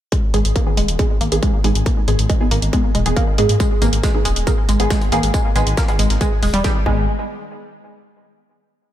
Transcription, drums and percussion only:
0.12 kick loud
0.12 closed hi-hat medium
0.34 open hi-hat loud
0.45 closed hi-hat medium
0.56 kick loud
0.56 closed hi-hat medium
0.77 open hi-hat loud
0.88 closed hi-hat medium
0.99 kick loud
0.99 closed hi-hat medium
1.21 open hi-hat loud
1.32 closed hi-hat medium
1.43 kick loud
1.43 closed hi-hat medium
1.64 open hi-hat loud
1.75 closed hi-hat medium
1.86 kick loud
1.86 closed hi-hat medium
2.08 open hi-hat loud
2.19 closed hi-hat medium
2.30 kick loud
2.30 closed hi-hat medium
2.51 open hi-hat loud
2.62 closed hi-hat medium
2.73 kick loud
2.73 closed hi-hat medium
2.95 open hi-hat loud
3.06 closed hi-hat medium
3.17 kick loud
3.17 closed hi-hat medium
3.38 open hi-hat loud
3.49 closed hi-hat medium
3.60 kick loud
3.60 closed hi-hat medium
3.60 tambourine medium
3.82 open hi-hat loud
3.82 tambourine medium
3.93 closed hi-hat medium
4.03 kick loud
4.03 snare loud
4.03 closed hi-hat medium
4.03 tambourine medium
4.25 open hi-hat loud
4.25 tambourine medium
4.36 closed hi-hat medium
4.47 kick loud
4.47 closed hi-hat medium
4.47 tambourine medium
4.69 open hi-hat loud
4.69 tambourine medium
4.80 closed hi-hat medium
4.90 kick loud
4.90 snare loud
4.90 closed hi-hat medium
4.90 tambourine medium
5.02 closed hi-hat soft
5.12 open hi-hat loud
5.12 tambourine medium
5.23 closed hi-hat medium
5.23 closed hi-hat soft
5.34 kick loud
5.34 closed hi-hat medium
5.34 tambourine medium
5.56 open hi-hat loud
5.56 tambourine medium
5.67 closed hi-hat medium
5.77 kick loud
5.77 snare loud
5.77 closed hi-hat medium
5.77 tambourine medium
5.88 closed hi-hat soft
5.99 open hi-hat loud
5.99 tambourine medium
6.10 snare medium
6.10 closed hi-hat medium
6.21 kick loud
6.21 closed hi-hat medium
6.21 tambourine medium
6.43 open hi-hat loud
6.43 open hi-hat medium
6.54 closed hi-hat medium
6.64 kick loud
6.64 snare loud
6.64 closed hi-hat medium
6.64 tambourine medium
6.86 kick loud

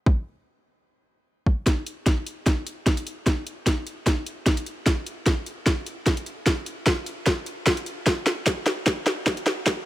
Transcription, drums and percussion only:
0.06 kick loud
1.46 kick medium
1.66 kick medium
1.66 snare soft
1.66 closed hi-hat medium
1.86 closed hi-hat medium
2.06 kick medium
2.06 snare soft
2.06 closed hi-hat medium
2.27 closed hi-hat medium
2.46 kick medium
2.46 snare soft
2.46 closed hi-hat medium
2.67 closed hi-hat medium
2.86 kick medium
2.86 snare medium
2.86 closed hi-hat medium
2.97 closed hi-hat medium
3.07 closed hi-hat medium
3.26 kick medium
3.26 snare soft
3.26 closed hi-hat medium
3.47 closed hi-hat medium
3.66 kick medium
3.66 snare medium
3.66 closed hi-hat medium
3.87 closed hi-hat medium
4.06 kick medium
4.06 snare medium
4.06 closed hi-hat medium
4.26 closed hi-hat medium
4.46 kick medium
4.46 snare medium
4.46 closed hi-hat medium
4.57 closed hi-hat medium
4.66 closed hi-hat medium
4.86 kick medium
4.86 snare medium
4.86 closed hi-hat medium
5.06 closed hi-hat medium
5.26 kick loud
5.26 snare medium
5.26 closed hi-hat medium
5.46 closed hi-hat medium
5.66 kick medium
5.66 snare medium
5.66 closed hi-hat medium
5.86 closed hi-hat medium
6.06 kick medium
6.06 snare medium
6.06 closed hi-hat medium
6.17 closed hi-hat medium
6.26 closed hi-hat medium
6.46 kick medium
6.46 snare medium
6.46 closed hi-hat medium
6.66 closed hi-hat medium
6.86 kick medium
6.86 snare medium
6.86 closed hi-hat medium
7.06 closed hi-hat medium
7.26 kick medium
7.26 snare medium
7.26 closed hi-hat medium
7.46 closed hi-hat medium
7.66 kick medium
7.66 snare medium
7.66 closed hi-hat medium
7.77 closed hi-hat medium
7.86 closed hi-hat medium
8.06 kick loud
8.06 snare medium
8.06 closed hi-hat medium
8.26 snare medium
8.26 closed hi-hat medium
8.46 kick medium
8.46 snare medium
8.46 closed hi-hat medium
8.66 snare medium
8.66 closed hi-hat medium
8.86 kick medium
8.86 snare medium
8.86 closed hi-hat medium
9.06 snare medium
9.06 closed hi-hat medium
9.26 kick medium
9.26 snare medium
9.26 closed hi-hat medium
9.37 closed hi-hat medium
9.46 snare medium
9.46 closed hi-hat medium
9.66 kick loud
9.66 snare medium
9.66 closed hi-hat medium

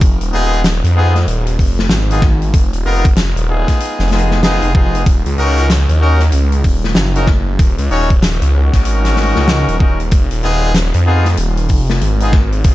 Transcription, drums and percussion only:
0.01 kick loud
0.01 closed hi-hat medium
0.21 closed hi-hat medium
0.33 open hi-hat medium
0.53 closed hi-hat medium
0.64 snare loud
0.64 closed hi-hat medium
0.84 closed hi-hat medium
1.15 snare soft
1.15 closed hi-hat medium
1.28 closed hi-hat medium
1.47 closed hi-hat medium
1.59 kick medium
1.59 open hi-hat medium
1.79 snare medium
1.89 snare loud
1.89 closed hi-hat medium
2.10 closed hi-hat medium
2.22 kick loud
2.22 snare medium
2.42 closed hi-hat medium
2.54 kick loud
2.54 closed hi-hat medium
2.73 closed hi-hat medium
2.86 open hi-hat medium
3.05 kick loud
3.05 closed hi-hat medium
3.16 snare loud
3.16 closed hi-hat loud
3.37 closed hi-hat medium
3.67 kick medium
3.67 snare soft
3.67 closed hi-hat medium
3.80 closed hi-hat medium
3.99 snare soft
3.99 closed hi-hat soft
4.08 snare soft
4.08 closed hi-hat soft
4.12 open hi-hat medium
4.18 closed hi-hat medium
4.31 snare soft
4.43 snare loud
4.43 closed hi-hat medium
4.62 closed hi-hat medium
4.75 kick loud
4.95 closed hi-hat medium
5.06 kick loud
5.06 closed hi-hat medium
5.26 closed hi-hat medium
5.38 open hi-hat medium
5.57 closed hi-hat soft
5.70 snare loud
5.70 closed hi-hat medium
5.89 closed hi-hat medium
6.20 snare soft
6.20 closed hi-hat medium
6.32 closed hi-hat medium
6.52 closed hi-hat medium
6.64 kick medium
6.64 open hi-hat medium
6.84 snare soft
6.95 snare loud
6.95 closed hi-hat medium
7.15 closed hi-hat medium
7.27 kick loud
7.27 snare medium
7.59 kick loud
7.59 closed hi-hat medium
7.78 closed hi-hat medium
7.91 open hi-hat medium
8.10 kick loud
8.10 closed hi-hat medium
8.22 snare loud
8.22 closed hi-hat medium
8.42 closed hi-hat medium
8.73 kick medium
8.73 snare soft
8.73 closed hi-hat medium
8.85 closed hi-hat medium
9.05 snare soft
9.05 closed hi-hat medium
9.16 snare soft
9.16 open hi-hat medium
9.36 snare soft
9.48 snare loud
9.48 closed hi-hat medium
9.68 closed hi-hat medium
9.80 kick loud
10.00 closed hi-hat medium
10.11 kick loud
10.11 closed hi-hat loud
10.31 closed hi-hat medium
10.43 open hi-hat medium
10.62 closed hi-hat medium
10.74 snare loud
10.74 closed hi-hat medium
10.94 closed hi-hat medium
11.25 snare soft
11.25 closed hi-hat medium
11.37 closed hi-hat medium
11.57 closed hi-hat medium
11.69 kick medium
11.69 open hi-hat medium
11.90 snare medium
12.01 closed hi-hat medium
12.20 closed hi-hat medium
12.32 kick loud
12.32 snare medium
12.52 closed hi-hat medium
12.64 kick loud
12.64 closed hi-hat loud

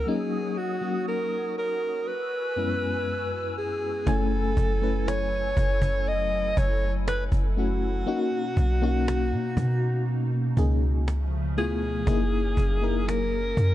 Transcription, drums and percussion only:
4.07 cajon bass loud
4.32 cajon slap soft
4.57 cajon bass medium
4.81 cajon slap soft
5.08 cajon slap loud
5.32 cajon slap soft
5.57 cajon bass loud
5.82 cajon bass loud
6.07 cajon slap soft
6.32 cajon slap soft
6.57 cajon bass loud
7.08 cajon slap loud
7.32 cajon bass medium
7.57 cajon slap soft
7.69 cajon slap soft
7.82 cajon slap soft
7.94 cajon slap soft
8.07 cajon slap soft
8.32 cajon slap soft
8.57 cajon bass medium
8.81 cajon slap soft
9.08 cajon slap loud
9.32 cajon slap soft
9.57 cajon bass loud
9.82 cajon slap soft
10.07 cajon slap soft
10.32 cajon slap soft
10.57 cajon bass loud
11.08 cajon slap loud
11.32 cajon slap soft
11.69 cajon slap soft
11.82 cajon slap soft
11.95 cajon slap soft
12.07 cajon bass loud
12.32 cajon slap soft
12.57 cajon bass loud
13.09 cajon slap loud
13.32 cajon slap soft
13.57 cajon bass loud

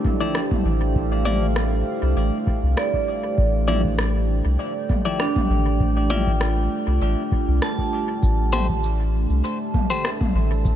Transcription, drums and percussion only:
0.05 kick loud
0.05 mid tom medium
0.35 cross-stick medium
0.51 kick loud
0.51 mid tom medium
0.96 kick loud
1.26 mid tom medium
1.56 cross-stick medium
2.47 kick loud
2.77 cross-stick medium
2.94 kick medium
3.38 kick loud
3.68 mid tom medium
3.85 kick medium
3.99 cross-stick medium
4.89 kick loud
4.89 mid tom medium
5.20 cross-stick medium
5.36 kick loud
5.36 mid tom medium
5.80 kick loud
6.11 mid tom medium
6.27 kick medium
6.41 cross-stick medium
7.32 kick loud
7.62 cross-stick medium
7.78 kick medium
8.23 kick loud
8.23 shaker medium
8.53 mid tom medium
8.69 kick medium
8.84 shaker medium
9.44 shaker medium
9.74 kick loud
9.74 mid tom medium
10.05 cross-stick medium
10.05 shaker medium
10.21 kick loud
10.21 mid tom medium
10.65 kick loud
10.65 shaker medium

